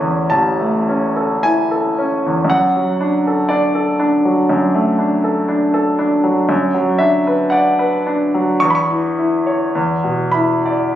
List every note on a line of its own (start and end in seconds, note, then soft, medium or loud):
0.00 0.27 A1 soft
0.00 2.26 E2 soft
0.00 0.89 C#4 soft
0.00 1.45 E4 soft
0.00 1.16 A4 soft
0.00 2.53 D5 medium
0.00 0.30 E5 soft
0.30 2.47 A1 soft
0.30 1.43 A5 medium
0.60 1.05 A3 soft
0.89 1.33 C#4 soft
1.16 1.61 A4 soft
1.43 1.88 E4 soft
1.43 2.50 G#5 medium
1.71 2.14 A4 soft
1.99 2.41 C#4 soft
2.26 2.51 E2 soft
2.45 4.42 F#2 soft
2.50 3.50 F#5 medium
2.76 3.16 F#3 soft
3.01 3.40 D4 soft
3.27 3.66 A4 soft
3.49 3.90 D4 soft
3.49 6.48 D5 medium
3.75 4.15 A4 soft
3.99 4.39 D4 soft
4.25 4.65 F#3 soft
4.49 6.45 F#2 soft
4.75 5.14 A3 soft
4.99 5.38 D4 soft
5.24 5.64 A4 soft
5.48 5.88 D4 soft
5.74 6.13 A4 soft
5.99 6.39 D4 soft
6.24 6.49 F#3 soft
6.49 8.58 F#2 medium
6.74 7.16 F#3 soft
6.98 7.43 D4 soft
6.98 7.52 E5 medium
7.27 7.69 B4 soft
7.50 7.95 D5 medium
7.50 8.60 F#5 medium
7.79 8.23 B4 soft
8.06 8.51 D4 soft
8.34 8.62 F#3 soft
8.60 9.72 E2 medium
8.60 8.68 C#6 medium
8.70 8.77 B5 medium
8.75 10.33 C#6 medium
8.91 9.36 E3 soft
9.18 9.64 E4 soft
9.47 9.75 C#5 soft
9.75 10.95 E2 medium
10.04 10.53 B2 soft
10.32 10.85 E4 soft
10.32 10.95 B5 medium
10.66 10.95 D5 soft